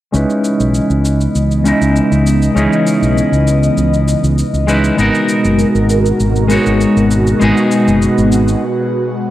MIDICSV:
0, 0, Header, 1, 5, 480
1, 0, Start_track
1, 0, Key_signature, 4, "minor"
1, 0, Tempo, 606061
1, 113, Time_signature, 4, 2, 24, 8
1, 7369, End_track
2, 0, Start_track
2, 0, Title_t, "Clean electric guitar"
2, 0, Program_c, 0, 27
2, 98, Note_on_c, 0, 56, 71
2, 105, Note_on_c, 0, 61, 68
2, 115, Note_on_c, 0, 63, 70
2, 122, Note_on_c, 0, 64, 65
2, 130, Note_on_c, 0, 71, 83
2, 1278, Note_off_c, 0, 56, 0
2, 1281, Note_off_c, 0, 61, 0
2, 1287, Note_off_c, 0, 63, 0
2, 1290, Note_off_c, 0, 64, 0
2, 1294, Note_off_c, 0, 71, 0
2, 1299, Note_on_c, 0, 56, 75
2, 1309, Note_on_c, 0, 61, 69
2, 1316, Note_on_c, 0, 63, 68
2, 1325, Note_on_c, 0, 64, 67
2, 1334, Note_on_c, 0, 75, 81
2, 1999, Note_off_c, 0, 56, 0
2, 2004, Note_off_c, 0, 61, 0
2, 2007, Note_off_c, 0, 63, 0
2, 2012, Note_off_c, 0, 64, 0
2, 2016, Note_off_c, 0, 75, 0
2, 2017, Note_on_c, 0, 56, 88
2, 2024, Note_on_c, 0, 61, 72
2, 2034, Note_on_c, 0, 63, 77
2, 2042, Note_on_c, 0, 64, 73
2, 2051, Note_on_c, 0, 68, 92
2, 3677, Note_off_c, 0, 56, 0
2, 3681, Note_off_c, 0, 61, 0
2, 3686, Note_off_c, 0, 63, 0
2, 3690, Note_off_c, 0, 64, 0
2, 3695, Note_off_c, 0, 68, 0
2, 3700, Note_on_c, 0, 56, 78
2, 3707, Note_on_c, 0, 61, 62
2, 3709, Note_on_c, 0, 63, 71
2, 3714, Note_on_c, 0, 64, 68
2, 3718, Note_on_c, 0, 71, 83
2, 3920, Note_off_c, 0, 56, 0
2, 3921, Note_off_c, 0, 61, 0
2, 3924, Note_off_c, 0, 63, 0
2, 3926, Note_off_c, 0, 64, 0
2, 3928, Note_off_c, 0, 71, 0
2, 3935, Note_on_c, 0, 56, 76
2, 3945, Note_on_c, 0, 59, 77
2, 3953, Note_on_c, 0, 63, 75
2, 3961, Note_on_c, 0, 66, 72
2, 3967, Note_on_c, 0, 70, 88
2, 5117, Note_off_c, 0, 56, 0
2, 5122, Note_off_c, 0, 59, 0
2, 5126, Note_off_c, 0, 63, 0
2, 5130, Note_off_c, 0, 66, 0
2, 5133, Note_off_c, 0, 70, 0
2, 5135, Note_on_c, 0, 56, 82
2, 5144, Note_on_c, 0, 59, 74
2, 5153, Note_on_c, 0, 63, 72
2, 5160, Note_on_c, 0, 66, 74
2, 5170, Note_on_c, 0, 73, 85
2, 5837, Note_off_c, 0, 56, 0
2, 5841, Note_off_c, 0, 59, 0
2, 5846, Note_off_c, 0, 63, 0
2, 5849, Note_off_c, 0, 66, 0
2, 5854, Note_off_c, 0, 73, 0
2, 5856, Note_on_c, 0, 56, 91
2, 5865, Note_on_c, 0, 59, 75
2, 5875, Note_on_c, 0, 63, 86
2, 5882, Note_on_c, 0, 66, 81
2, 5891, Note_on_c, 0, 68, 97
2, 6825, Note_off_c, 0, 56, 0
2, 6829, Note_off_c, 0, 59, 0
2, 6834, Note_off_c, 0, 63, 0
2, 6837, Note_off_c, 0, 66, 0
2, 6842, Note_off_c, 0, 68, 0
2, 7369, End_track
3, 0, Start_track
3, 0, Title_t, "Analog synth pad"
3, 0, Program_c, 1, 89
3, 107, Note_on_c, 1, 59, 74
3, 107, Note_on_c, 1, 75, 86
3, 109, Note_on_c, 1, 52, 69
3, 110, Note_on_c, 1, 49, 78
3, 3919, Note_off_c, 1, 52, 0
3, 3919, Note_off_c, 1, 59, 0
3, 3919, Note_off_c, 1, 75, 0
3, 3920, Note_off_c, 1, 49, 0
3, 3949, Note_on_c, 1, 66, 91
3, 3950, Note_on_c, 1, 47, 82
3, 3951, Note_on_c, 1, 56, 72
3, 3951, Note_on_c, 1, 70, 73
3, 5853, Note_off_c, 1, 70, 0
3, 5870, Note_on_c, 1, 59, 75
3, 7369, Note_off_c, 1, 47, 0
3, 7369, Note_off_c, 1, 56, 0
3, 7369, Note_off_c, 1, 59, 0
3, 7369, Note_off_c, 1, 66, 0
3, 7369, End_track
4, 0, Start_track
4, 0, Title_t, "Fretless electric bass"
4, 0, Program_c, 2, 35
4, 109, Note_on_c, 2, 37, 82
4, 187, Note_off_c, 2, 37, 0
4, 476, Note_on_c, 2, 35, 72
4, 617, Note_off_c, 2, 35, 0
4, 712, Note_on_c, 2, 37, 81
4, 997, Note_off_c, 2, 37, 0
4, 1071, Note_on_c, 2, 37, 77
4, 1358, Note_off_c, 2, 37, 0
4, 1436, Note_on_c, 2, 37, 73
4, 1577, Note_off_c, 2, 37, 0
4, 1675, Note_on_c, 2, 37, 80
4, 1959, Note_off_c, 2, 37, 0
4, 2027, Note_on_c, 2, 37, 85
4, 2106, Note_off_c, 2, 37, 0
4, 2394, Note_on_c, 2, 35, 75
4, 2536, Note_off_c, 2, 35, 0
4, 2631, Note_on_c, 2, 37, 80
4, 2917, Note_off_c, 2, 37, 0
4, 2988, Note_on_c, 2, 37, 82
4, 3276, Note_off_c, 2, 37, 0
4, 3353, Note_on_c, 2, 37, 77
4, 3496, Note_off_c, 2, 37, 0
4, 3592, Note_on_c, 2, 37, 80
4, 3877, Note_off_c, 2, 37, 0
4, 3948, Note_on_c, 2, 32, 85
4, 4026, Note_off_c, 2, 32, 0
4, 4315, Note_on_c, 2, 30, 78
4, 4457, Note_off_c, 2, 30, 0
4, 4553, Note_on_c, 2, 32, 86
4, 4837, Note_off_c, 2, 32, 0
4, 4910, Note_on_c, 2, 32, 84
4, 5197, Note_off_c, 2, 32, 0
4, 5278, Note_on_c, 2, 32, 75
4, 5418, Note_off_c, 2, 32, 0
4, 5518, Note_on_c, 2, 32, 79
4, 5800, Note_off_c, 2, 32, 0
4, 5873, Note_on_c, 2, 32, 92
4, 5949, Note_off_c, 2, 32, 0
4, 6238, Note_on_c, 2, 30, 77
4, 6378, Note_off_c, 2, 30, 0
4, 6480, Note_on_c, 2, 32, 90
4, 6761, Note_off_c, 2, 32, 0
4, 7369, End_track
5, 0, Start_track
5, 0, Title_t, "Drums"
5, 113, Note_on_c, 9, 69, 36
5, 192, Note_off_c, 9, 69, 0
5, 237, Note_on_c, 9, 69, 17
5, 316, Note_off_c, 9, 69, 0
5, 353, Note_on_c, 9, 69, 59
5, 432, Note_off_c, 9, 69, 0
5, 478, Note_on_c, 9, 69, 27
5, 557, Note_off_c, 9, 69, 0
5, 590, Note_on_c, 9, 69, 36
5, 669, Note_off_c, 9, 69, 0
5, 716, Note_on_c, 9, 69, 18
5, 795, Note_off_c, 9, 69, 0
5, 833, Note_on_c, 9, 69, 63
5, 912, Note_off_c, 9, 69, 0
5, 957, Note_on_c, 9, 69, 28
5, 1036, Note_off_c, 9, 69, 0
5, 1072, Note_on_c, 9, 69, 35
5, 1152, Note_off_c, 9, 69, 0
5, 1199, Note_on_c, 9, 69, 20
5, 1278, Note_off_c, 9, 69, 0
5, 1313, Note_on_c, 9, 69, 68
5, 1392, Note_off_c, 9, 69, 0
5, 1440, Note_on_c, 9, 69, 29
5, 1519, Note_off_c, 9, 69, 0
5, 1554, Note_on_c, 9, 69, 38
5, 1633, Note_off_c, 9, 69, 0
5, 1680, Note_on_c, 9, 69, 19
5, 1759, Note_off_c, 9, 69, 0
5, 1796, Note_on_c, 9, 69, 71
5, 1875, Note_off_c, 9, 69, 0
5, 1919, Note_on_c, 9, 69, 30
5, 1998, Note_off_c, 9, 69, 0
5, 2035, Note_on_c, 9, 69, 40
5, 2114, Note_off_c, 9, 69, 0
5, 2160, Note_on_c, 9, 69, 19
5, 2240, Note_off_c, 9, 69, 0
5, 2273, Note_on_c, 9, 69, 67
5, 2352, Note_off_c, 9, 69, 0
5, 2399, Note_on_c, 9, 69, 28
5, 2478, Note_off_c, 9, 69, 0
5, 2517, Note_on_c, 9, 69, 40
5, 2596, Note_off_c, 9, 69, 0
5, 2639, Note_on_c, 9, 69, 20
5, 2719, Note_off_c, 9, 69, 0
5, 2753, Note_on_c, 9, 69, 63
5, 2832, Note_off_c, 9, 69, 0
5, 2878, Note_on_c, 9, 69, 30
5, 2957, Note_off_c, 9, 69, 0
5, 2991, Note_on_c, 9, 69, 39
5, 3070, Note_off_c, 9, 69, 0
5, 3119, Note_on_c, 9, 69, 21
5, 3198, Note_off_c, 9, 69, 0
5, 3234, Note_on_c, 9, 69, 71
5, 3313, Note_off_c, 9, 69, 0
5, 3359, Note_on_c, 9, 69, 31
5, 3438, Note_off_c, 9, 69, 0
5, 3473, Note_on_c, 9, 69, 43
5, 3552, Note_off_c, 9, 69, 0
5, 3598, Note_on_c, 9, 69, 20
5, 3678, Note_off_c, 9, 69, 0
5, 3712, Note_on_c, 9, 69, 76
5, 3792, Note_off_c, 9, 69, 0
5, 3836, Note_on_c, 9, 69, 32
5, 3915, Note_off_c, 9, 69, 0
5, 3950, Note_on_c, 9, 69, 40
5, 4030, Note_off_c, 9, 69, 0
5, 4077, Note_on_c, 9, 69, 21
5, 4156, Note_off_c, 9, 69, 0
5, 4189, Note_on_c, 9, 69, 66
5, 4268, Note_off_c, 9, 69, 0
5, 4314, Note_on_c, 9, 69, 29
5, 4393, Note_off_c, 9, 69, 0
5, 4428, Note_on_c, 9, 69, 43
5, 4508, Note_off_c, 9, 69, 0
5, 4557, Note_on_c, 9, 69, 20
5, 4636, Note_off_c, 9, 69, 0
5, 4671, Note_on_c, 9, 69, 73
5, 4750, Note_off_c, 9, 69, 0
5, 4798, Note_on_c, 9, 69, 29
5, 4878, Note_off_c, 9, 69, 0
5, 4911, Note_on_c, 9, 69, 39
5, 4991, Note_off_c, 9, 69, 0
5, 5038, Note_on_c, 9, 69, 21
5, 5117, Note_off_c, 9, 69, 0
5, 5150, Note_on_c, 9, 69, 71
5, 5229, Note_off_c, 9, 69, 0
5, 5277, Note_on_c, 9, 69, 33
5, 5357, Note_off_c, 9, 69, 0
5, 5393, Note_on_c, 9, 69, 44
5, 5472, Note_off_c, 9, 69, 0
5, 5521, Note_on_c, 9, 69, 20
5, 5600, Note_off_c, 9, 69, 0
5, 5632, Note_on_c, 9, 69, 70
5, 5711, Note_off_c, 9, 69, 0
5, 5759, Note_on_c, 9, 69, 32
5, 5838, Note_off_c, 9, 69, 0
5, 5871, Note_on_c, 9, 69, 44
5, 5951, Note_off_c, 9, 69, 0
5, 5997, Note_on_c, 9, 69, 19
5, 6076, Note_off_c, 9, 69, 0
5, 6110, Note_on_c, 9, 69, 70
5, 6189, Note_off_c, 9, 69, 0
5, 6240, Note_on_c, 9, 69, 29
5, 6319, Note_off_c, 9, 69, 0
5, 6354, Note_on_c, 9, 69, 42
5, 6433, Note_off_c, 9, 69, 0
5, 6480, Note_on_c, 9, 69, 20
5, 6559, Note_off_c, 9, 69, 0
5, 6592, Note_on_c, 9, 69, 74
5, 6671, Note_off_c, 9, 69, 0
5, 6718, Note_on_c, 9, 69, 31
5, 6797, Note_off_c, 9, 69, 0
5, 7369, End_track
0, 0, End_of_file